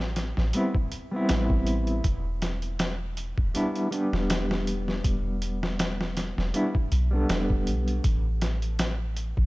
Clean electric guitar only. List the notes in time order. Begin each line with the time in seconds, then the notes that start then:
Already playing: G3 B3 C4 G4
0.54 G3 B3 C4 E4
1.11 G3 B3 C4
1.16 E4
3.54 G3 B3 D4 E4
3.91 G3 B3 D4
3.95 G4
6.54 G3 B3 D4 E4
7.11 G3 B3 D4
7.16 A4